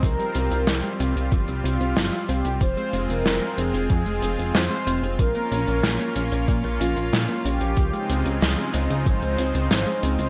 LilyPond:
<<
  \new Staff \with { instrumentName = "Analog polysynth" } { \time 4/4 \key f \minor \tempo 4 = 93 bes'2 r8 f'4 g'8 | c''8. bes'8. aes'8 aes'4 c''4 | bes'2 r8 f'4 g'8~ | g'4. r8 c''2 | }
  \new Staff \with { instrumentName = "Analog synth pad" } { \time 4/4 \key f \minor << { f'1~ | f'1~ | f'1~ | f'1 | } \\ { <g c'>1 | <aes c'>1 | <bes des'>1 | <des aes c' ees'>1 | } >> }
  \new Staff \with { instrumentName = "Synth arpeggio sound" } { \time 4/4 \key f \minor f16 g16 c'16 c'16 f16 g16 c'16 c'16 f16 g16 c'16 c'16 f16 g16 c'16 c'16 | f16 aes16 c'16 c'16 f16 aes16 c'16 c'16 f16 aes16 c'16 c'16 f16 aes16 c'16 c'16 | f16 bes16 des'16 des'16 f16 bes16 des'16 des'16 f16 bes16 des'16 des'16 f16 bes16 des'16 des'16 | f16 aes16 c'16 c'16 f16 aes16 c'16 c'16 f16 aes16 c'16 c'16 f16 aes16 c'16 c'16 | }
  \new Staff \with { instrumentName = "Analog synth bass" } { \clef bass \time 4/4 \key f \minor c,16 r16 c,16 c,16 c,16 r16 c,16 c,16 g,,16 c,16 c,16 c,16 g,,16 r16 c,16 c,16 | f,,16 r16 f,,16 f,,16 f,,16 r16 f,,16 f,,16 f,16 f,,16 f,,16 f,,16 f,16 r16 f,,16 f,,16 | bes,,16 r16 bes,,16 bes,,16 bes,,16 r16 bes,,16 bes,,16 bes,16 bes,,16 bes,,16 bes,,16 bes,16 r16 bes,,16 bes,,16 | des,16 r16 des,16 des,16 des,16 r16 des,16 des,16 aes,,16 des,16 des,16 des,16 aes,,16 r16 des,16 des,16 | }
  \new DrumStaff \with { instrumentName = "Drums" } \drummode { \time 4/4 <hh bd>16 hh16 hh16 hh16 <hh sn>16 hh16 hh16 hh16 <hh bd>16 hh16 hh16 hh16 <hh sn>16 hh16 hh16 hh16 | <hh bd>16 hh16 hh16 hh16 <hh sn>16 hh16 hh16 hh16 <hh bd>16 hh16 hh16 hh16 <hh sn>16 hh16 hh16 hh16 | <hh bd>16 hh16 hh16 hh16 <hh sn>16 hh16 hh16 hh16 <hh bd>16 hh16 hh16 hh16 <hh sn>16 hh16 hh16 hh16 | <hh bd>16 hh16 hh16 hh16 <hh sn>16 hh16 hh16 hh16 <hh bd>16 hh16 hh16 hh16 <hh sn>16 hh16 hh16 hh16 | }
>>